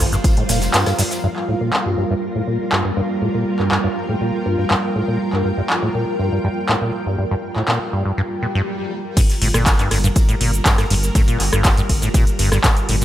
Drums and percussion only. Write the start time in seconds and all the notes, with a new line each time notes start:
0.00 tambourine, shaker
0.12 snare, closed hi-hat, shaker
0.24 kick, closed hi-hat, ride, tambourine, shaker
0.37 closed hi-hat
0.49 snare, open hi-hat, ride, tambourine, shaker
0.61 snare, closed hi-hat, tambourine, shaker
0.74 snare, clap, closed hi-hat, ride, tambourine, shaker
0.86 cross-stick, snare, closed hi-hat, tambourine
0.98 snare, open hi-hat, ride, tambourine, shaker
1.11 snare, closed hi-hat, tambourine, shaker
1.36 clap
1.73 clap
2.72 clap
3.59 clap
3.72 clap
4.71 clap
5.33 clap
5.70 clap
6.69 clap
7.56 clap
7.68 clap
9.17 kick, closed hi-hat, crash, ride, tambourine, shaker
9.30 snare, closed hi-hat, shaker
9.42 open hi-hat, ride, tambourine
9.54 cross-stick, snare, closed hi-hat, shaker
9.66 kick, snare, clap, closed hi-hat, ride, tambourine, shaker
9.79 clap, closed hi-hat, shaker
9.91 cross-stick, open hi-hat, ride, tambourine
10.04 closed hi-hat, shaker
10.16 kick, closed hi-hat, ride, tambourine, shaker
10.29 closed hi-hat, shaker
10.41 open hi-hat, ride, tambourine
10.53 closed hi-hat, shaker
10.66 kick, snare, clap, closed hi-hat, ride, tambourine, shaker
10.78 cross-stick, snare, closed hi-hat, shaker
10.90 open hi-hat, ride, tambourine
11.03 snare, closed hi-hat, shaker
11.15 kick, closed hi-hat, ride, tambourine, shaker
11.28 closed hi-hat, shaker
11.40 clap, open hi-hat, ride, tambourine
11.53 cross-stick, closed hi-hat, shaker
11.64 kick, snare, clap, closed hi-hat, ride, tambourine, shaker
11.77 closed hi-hat, shaker
11.89 kick, open hi-hat, ride, tambourine
12.02 snare, closed hi-hat, shaker
12.14 kick, closed hi-hat, ride, tambourine, shaker
12.27 closed hi-hat, shaker
12.39 open hi-hat, ride, tambourine
12.51 cross-stick, snare, closed hi-hat, shaker
12.64 kick, snare, clap, closed hi-hat, ride, tambourine, shaker
12.77 closed hi-hat, shaker
12.89 open hi-hat, ride, tambourine
13.01 closed hi-hat